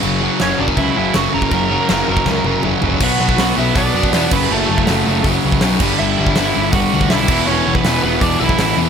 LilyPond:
<<
  \new Staff \with { instrumentName = "Overdriven electric guitar" } { \time 4/4 \key fis \phrygian \tempo 4 = 161 r4 <cis' cis''>8 <d' d''>8 <e' e''>8 <e' e''>8 <fis' fis''>8 <ais' ais''>8~ | <ais' ais''>2. r4 | <fis' fis''>4. <e' e''>8 <d' d''>4. <b b'>8 | <a a'>2 r2 |
<e' e''>2 <fis' fis''>4 <e' e''>4 | <cis' cis''>8. <b b'>8. <b b'>8 <d' d''>8 <e' e''>4 r8 | }
  \new Staff \with { instrumentName = "Distorted electric guitar" } { \clef bass \time 4/4 \key fis \phrygian <fis, cis fis>8 <fis, cis fis>8 <fis, cis fis>8 <fis, cis fis>8 <fis, cis fis>8 <fis, cis fis>8 <fis, cis fis>8 <fis, cis fis>8 | <fis, cis fis>8 <fis, cis fis>8 <fis, cis fis>8 <fis, cis fis>8 <fis, cis fis>8 <fis, cis fis>8 <fis, cis fis>8 <fis, cis fis>8 | <b, fis b>8 <b, fis b>8 <b, fis b>8 <b, fis b>8 <b, fis b>8 <b, fis b>8 <b, fis b>8 <fis, cis fis>8 | <fis, cis fis>8 <fis, cis fis>8 <fis, cis fis>8 <fis, cis fis>8 <fis, cis fis>8 <fis, cis fis>8 <fis, cis fis>8 <g, d g>8 |
<g, d g>8 <g, d g>8 <g, d g>8 <g, d g>8 <g, d g>8 <g, d g>8 <g, d g>8 <e, b, e>8 | <e, b, e>8 <e, b, e>8 <e, b, e>8 <e, b, e>8 <e, b, e>8 <e, b, e>8 <e, b, e>8 <e, b, e>8 | }
  \new Staff \with { instrumentName = "Distorted electric guitar" } { \clef bass \time 4/4 \key fis \phrygian <fis, cis fis>8 <fis, cis fis>8 <fis, cis fis>8 <fis, cis fis>8 <fis, cis fis>8 <fis, cis fis>8 <fis, cis fis>8 <fis, cis fis>8 | <fis, cis fis>8 <fis, cis fis>8 <fis, cis fis>8 <fis, cis fis>8 <fis, cis fis>8 <fis, cis fis>8 <fis, cis fis>8 <fis, cis fis>8 | <b, fis b>8 <b, fis b>8 <b, fis b>8 <b, fis b>8 <b, fis b>8 <b, fis b>8 <b, fis b>8 <fis, cis fis>8 | <fis, cis fis>8 <fis, cis fis>8 <fis, cis fis>8 <fis, cis fis>8 <fis, cis fis>8 <fis, cis fis>8 <fis, cis fis>8 <g, d g>8 |
<g, d g>8 <g, d g>8 <g, d g>8 <g, d g>8 <g, d g>8 <g, d g>8 <g, d g>8 <e, b, e>8 | <e, b, e>8 <e, b, e>8 <e, b, e>8 <e, b, e>8 <e, b, e>8 <e, b, e>8 <e, b, e>8 <e, b, e>8 | }
  \new Staff \with { instrumentName = "Picked electric bass" } { \clef bass \time 4/4 \key fis \phrygian fis,,4 fis,,8 fis,,8 cis,8 fis,,8 fis,,8 fis,,8 | fis,,4 fis,,8 fis,,8 cis,8 fis,,8 fis,,8 fis,,8 | b,,8 b,,8 b,,8 b,,8 b,,8 fis,8 e,8 fis,,8 | fis,,8 fis,,8 fis,,8 fis,,8 fis,,8 cis,8 b,,8 g,,8 |
g,,8 g,,8 g,,8 g,,8 g,,8 d,8 b,,8 e,,8 | e,,8 e,,8 e,,8 e,,8 e,,8 b,,8 a,,8 e,8 | }
  \new DrumStaff \with { instrumentName = "Drums" } \drummode { \time 4/4 cymc4 <cymc sn>8. bd16 <cymc bd>4 <cymc sn>8. bd16 | <cymc bd>4 <cymc sn>8. bd16 <bd sn>8 tommh8 toml8 tomfh8 | <cymc bd>8. bd16 <hho sn>4 <hho bd>8. bd16 <hho sn>8 <cymc bd>8 | r8. bd16 <hho sn>4 <hho bd>8. bd16 <hho sn>8 <cymc bd>8 |
r8. bd16 <hho sn>4 <hho bd>8. bd16 <hho sn>8 <cymc bd>8 | r8. bd16 <hho sn>4 <hho bd>8. bd16 <hho sn>4 | }
>>